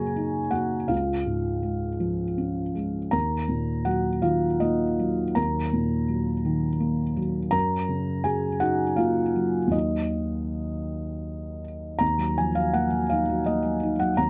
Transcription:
0.00 0.87 F#2 soft
0.00 0.94 C#3 soft
0.00 0.39 F#3 soft
0.00 0.51 A#3 soft
0.00 0.49 G#4 soft
0.00 0.94 A#4 soft
0.00 0.94 C#5 medium
0.00 0.53 G#5 medium
0.00 0.94 A#5 medium
0.00 0.94 C#6 medium
0.16 0.76 D#4 soft
0.51 0.90 A#3 soft
0.51 0.87 F#4 soft
0.51 0.89 F#5 medium
0.88 3.09 C#2 soft
0.88 2.72 F4 soft
0.88 2.75 F5 soft
1.26 1.87 G#2 soft
1.63 2.23 G#3 soft
2.00 2.61 F3 soft
2.38 2.98 C#4 soft
2.75 3.13 G#3 soft
3.11 5.32 D#2 soft
3.11 3.83 A#4 soft
3.11 3.86 A#5 medium
3.48 4.08 A#2 soft
3.85 4.46 F#3 soft
3.85 4.21 F#4 soft
3.85 4.23 F#5 medium
4.22 4.83 D#3 soft
4.22 4.58 F4 soft
4.22 4.60 F5 medium
4.60 5.22 A#3 soft
4.60 5.33 D#4 soft
4.60 5.36 D#5 medium
4.99 5.59 F#3 soft
5.35 7.49 D#2 soft
5.35 7.13 A#4 medium
5.35 7.17 A#5 medium
5.73 6.31 A#2 soft
6.08 6.67 F#3 soft
6.45 7.03 D#3 soft
6.80 7.38 A#3 soft
7.17 7.53 F#3 soft
7.51 9.68 F#2 soft
7.51 8.21 A#4 medium
7.51 8.24 A#5 medium
7.89 8.47 C#3 soft
8.24 8.83 F#3 soft
8.24 8.59 G#4 soft
8.24 8.61 G#5 medium
8.60 9.20 D#4 soft
8.60 8.96 F#4 soft
8.60 8.98 F#5 medium
8.96 9.58 A#3 soft
8.96 9.69 F4 soft
8.96 9.72 F5 medium
9.36 9.69 F#3 soft
9.67 11.94 D#2 soft
9.67 11.95 D#3 soft
9.67 11.96 F#3 soft
9.71 11.96 A#3 soft
9.71 11.59 D#4 soft
9.71 11.63 D#5 medium
11.99 14.13 D#2 soft
11.99 12.36 A#5 medium
12.18 12.48 F#3 soft
12.38 12.57 F3 soft
12.38 12.56 G#5 medium
12.55 12.85 F#3 soft
12.55 12.74 F5 medium
12.74 13.03 A#3 soft
12.74 13.10 F#5 medium
12.92 13.21 F#3 soft
13.10 13.39 D#4 soft
13.10 13.46 F5 medium
13.29 13.57 F#3 soft
13.46 13.75 A#3 soft
13.46 13.99 D#5 medium
13.64 13.92 F#3 soft
13.83 14.11 D#4 soft
14.00 14.28 F#3 soft
14.00 14.17 F#5 medium
14.17 14.30 D#2 soft
14.17 14.30 A#5 medium

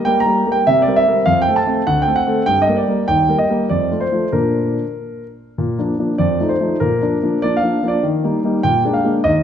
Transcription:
0.05 0.20 G3 soft
0.05 0.20 A#3 soft
0.05 0.21 A#4 soft
0.05 0.20 G5 medium
0.20 0.47 A#5 medium
0.26 0.40 G3 soft
0.26 0.41 A#3 soft
0.26 0.41 A#4 soft
0.46 0.60 G3 soft
0.46 0.61 A#3 soft
0.46 0.61 A#4 soft
0.52 0.66 G5 medium
0.67 0.86 C3 medium
0.67 0.81 E5 medium
0.82 0.96 D5 medium
0.87 1.01 G3 soft
0.87 1.01 C4 soft
0.87 1.01 A#4 soft
0.96 1.26 E5 medium
1.07 1.21 G3 soft
1.07 1.21 C4 soft
1.07 1.22 A#4 soft
1.26 1.46 F2 medium
1.26 1.41 F5 medium
1.42 1.56 G5 medium
1.48 1.61 A3 soft
1.48 1.62 C4 soft
1.48 1.62 A4 soft
1.56 1.83 A5 medium
1.67 1.81 A3 soft
1.67 1.81 C4 soft
1.67 1.81 A4 soft
1.87 2.06 D2 soft
1.87 2.01 F#5 medium
2.02 2.17 G5 medium
2.07 2.21 A3 soft
2.07 2.22 C4 soft
2.07 2.22 A4 soft
2.16 2.46 F#5 medium
2.27 2.41 A3 soft
2.27 2.41 C4 soft
2.27 2.42 A4 soft
2.46 2.67 G2 soft
2.46 2.62 G5 medium
2.62 2.77 D#5 medium
2.67 2.82 G3 soft
2.67 2.82 A#3 soft
2.67 2.82 A#4 soft
2.77 3.07 D5 medium
2.88 3.02 G3 soft
2.88 3.03 A#3 soft
2.88 3.03 A#4 soft
3.08 3.28 D#2 soft
3.08 3.35 G5 medium
3.28 3.43 G3 soft
3.28 3.43 A#3 soft
3.28 3.44 A#4 soft
3.38 3.70 D#5 medium
3.49 3.64 G3 soft
3.49 3.64 A#3 soft
3.49 3.65 A#4 soft
3.69 3.90 F2 soft
3.69 4.01 D5 medium
3.91 4.06 F3 soft
3.91 4.06 A3 soft
3.91 4.06 F4 soft
4.00 4.32 C5 medium
4.12 4.27 F3 soft
4.12 4.27 A3 soft
4.12 4.27 F4 soft
4.32 4.77 A#2 soft
4.32 4.83 A#3 soft
4.32 4.83 D4 soft
4.32 5.23 A#4 medium
5.58 5.78 A#2 soft
5.78 5.93 F3 soft
5.78 5.93 A#3 soft
5.78 5.94 D4 soft
5.99 6.14 F3 soft
5.99 6.14 A#3 soft
5.99 6.14 D4 soft
6.18 6.39 F2 soft
6.18 6.49 D5 medium
6.40 6.55 F3 soft
6.40 6.55 A3 soft
6.40 6.55 D#4 soft
6.49 6.77 C5 medium
6.60 6.75 F3 soft
6.60 6.75 A3 soft
6.60 6.76 D#4 soft
6.80 7.01 A#2 soft
6.80 7.42 A#4 medium
7.02 7.16 F3 soft
7.02 7.17 A#3 soft
7.02 7.17 D4 soft
7.23 7.37 F3 soft
7.23 7.37 A#3 soft
7.23 7.38 D4 soft
7.42 7.58 F3 soft
7.42 7.58 A#3 soft
7.42 7.58 D4 soft
7.42 7.58 D5 medium
7.57 7.88 F5 medium
7.62 7.77 F3 soft
7.62 7.77 A#3 soft
7.62 7.78 D4 soft
7.83 7.97 F3 soft
7.83 7.98 A#3 soft
7.83 7.98 D4 soft
7.88 8.03 D5 medium
8.03 8.23 D#3 soft
8.23 8.38 G3 soft
8.23 8.38 A#3 soft
8.23 8.39 D#4 soft
8.44 8.58 G3 soft
8.44 8.58 A#3 soft
8.44 8.59 D#4 soft
8.63 8.84 A#2 soft
8.63 8.82 G5 medium
8.85 8.99 G#3 soft
8.85 8.99 A#3 soft
8.85 9.00 D4 soft
8.94 9.12 F5 medium
9.04 9.19 G#3 soft
9.04 9.19 A#3 soft
9.04 9.19 D4 soft
9.24 9.43 D#2 medium
9.24 9.43 D#5 medium

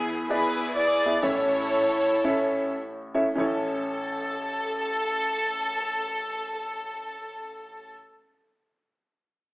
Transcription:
0.00 1.19 E2 medium
0.00 1.19 E3 medium
0.00 0.53 B3 medium
0.00 0.28 E4 medium
0.00 0.25 G#4 loud
0.29 0.70 B3 medium
0.29 1.19 E4 medium
0.29 0.70 E4 medium
0.29 0.74 G#4 medium
0.29 0.70 G#4 medium
0.29 0.70 B4 medium
0.29 0.74 B4 loud
0.29 0.70 D5 medium
0.75 1.20 G#4 medium
0.75 1.20 B4 medium
0.75 1.20 D5 loud
1.05 1.15 B3 medium
1.05 1.15 E4 medium
1.05 1.15 G#4 medium
1.05 1.16 B4 medium
1.05 1.15 E5 medium
1.23 3.32 A1 medium
1.23 3.32 A2 medium
1.23 1.80 C#4 medium
1.23 1.80 E4 medium
1.23 2.74 E4 medium
1.23 2.74 A4 medium
1.23 1.81 A4 medium
1.23 2.78 C#5 loud
1.23 1.80 C#5 medium
1.23 1.80 E5 medium
2.24 2.72 C#4 medium
2.24 2.72 E4 medium
2.24 2.72 A4 medium
2.24 2.72 C#5 medium
2.24 2.72 E5 loud
3.14 3.26 C#4 medium
3.14 3.27 E4 medium
3.14 3.27 A4 medium
3.14 3.26 C#5 medium
3.14 3.27 E5 medium
3.35 7.92 A1 medium
3.35 7.90 C#4 medium
3.35 7.91 E4 medium
3.35 7.90 A4 medium
3.35 7.93 A4 medium
3.39 7.94 C#5 loud

